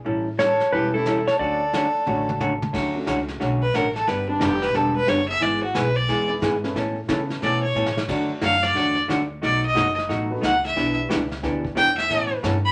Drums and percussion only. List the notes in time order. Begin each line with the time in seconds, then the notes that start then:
0.05 brush sweep
0.39 snare, hi-hat pedal
0.60 snare
0.72 brush sweep
1.06 snare, hi-hat pedal
1.27 snare
1.40 brush sweep
1.73 snare, hi-hat pedal
2.07 mid tom
2.29 mid tom
2.41 hi-hat pedal, mid tom
2.62 mid tom
2.74 brush sweep, kick, snare, crash
3.07 snare, hi-hat pedal
3.28 snare
3.41 brush sweep, snare
3.74 snare, hi-hat pedal
3.96 snare
4.08 brush sweep, snare
4.41 snare, hi-hat pedal
4.62 snare
4.74 brush sweep, snare
5.08 snare, hi-hat pedal
5.42 brush sweep, snare
5.75 snare, hi-hat pedal
6.08 brush sweep, snare
6.42 snare, hi-hat pedal
6.64 snare
6.76 brush sweep, snare
7.09 snare, hi-hat pedal
7.30 snare
7.42 brush sweep, snare
7.76 hi-hat pedal
7.86 snare
7.97 snare
8.08 brush sweep, kick, snare, crash
8.41 snare, hi-hat pedal
8.63 snare
8.76 brush sweep, snare
9.10 snare, hi-hat pedal
9.43 brush sweep, snare
9.77 snare, hi-hat pedal
9.98 snare
10.10 brush sweep, snare
10.43 snare, hi-hat pedal
10.65 snare
10.77 brush sweep, snare
11.10 snare, hi-hat pedal
11.31 snare
11.43 brush sweep, snare
11.65 kick
11.77 snare, hi-hat pedal
11.98 snare
12.10 brush sweep, snare
12.44 snare, hi-hat pedal